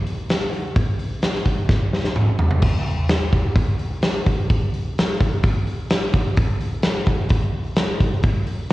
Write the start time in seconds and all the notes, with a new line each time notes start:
0.07 open hi-hat
0.29 snare, open hi-hat
0.53 open hi-hat
0.76 kick, open hi-hat
0.99 open hi-hat
1.22 snare, open hi-hat
1.35 snare
1.45 kick, open hi-hat
1.69 kick, snare
1.93 snare
2.04 snare
2.16 mid tom
2.39 floor tom
2.50 floor tom
2.62 kick, crash
2.86 open hi-hat
3.09 snare, open hi-hat
3.33 kick, open hi-hat
3.56 kick, open hi-hat
3.79 open hi-hat
4.02 snare, open hi-hat
4.27 kick, open hi-hat
4.50 kick, open hi-hat
4.74 open hi-hat
4.98 snare, open hi-hat
5.21 kick, open hi-hat
5.43 kick, open hi-hat
5.67 open hi-hat
5.90 snare, open hi-hat
6.13 kick, open hi-hat
6.36 kick, open hi-hat
6.60 open hi-hat
6.82 snare, open hi-hat
7.06 kick, open hi-hat
7.29 kick, open hi-hat
7.53 open hi-hat
7.76 snare, open hi-hat
8.00 kick, open hi-hat
8.23 kick, open hi-hat
8.47 open hi-hat
8.70 open hi-hat